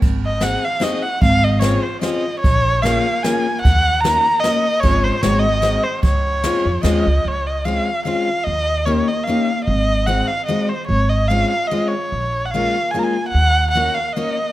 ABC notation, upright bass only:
X:1
M:3/4
L:1/8
Q:"Swing" 1/4=149
K:Db
V:1 name="Upright bass" clef=bass
A,,,4 z2 | A,,,4 z2 | B,,,4 z2 | E,,4 z2 |
A,,,2 A,,,4 | D,,3 F,, E,, D,, | D,,4 z2 | E,,4 z2 |
A,,,4 z2 | A,,,4 z2 | B,,,4 z2 | E,,4 z2 |]